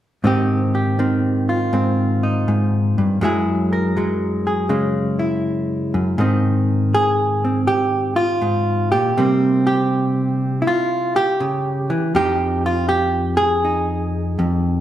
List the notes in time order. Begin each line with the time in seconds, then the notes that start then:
0.24 G#2 D#3 C4 D#4 G4
0.75 G4
0.99 D#3 C4
1.49 F4
1.73 G#2 C4
2.23 D#4
2.48 G#2
2.98 G2
3.21 F#2 F#3 G#3 E4 G#4
3.73 A#4
3.97 F#3 G#3
4.47 G#4
4.69 C#3 G#3
5.19 E4
5.94 F#2
6.18 G#2 D#3 C4 D#4
6.95 G#4
7.45 C4
7.67 G4
8.16 F4
8.42 G#2
8.92 A#2 G4
9.17 C3 G3 A#3 C4
9.67 G4
10.62 E4
10.67 F4
11.16 G4
11.40 C#3
11.90 E3
12.15 F2 F3 D#4 G4
12.66 F4
12.89 G4
13.37 G#4
13.65 D#4
14.39 F2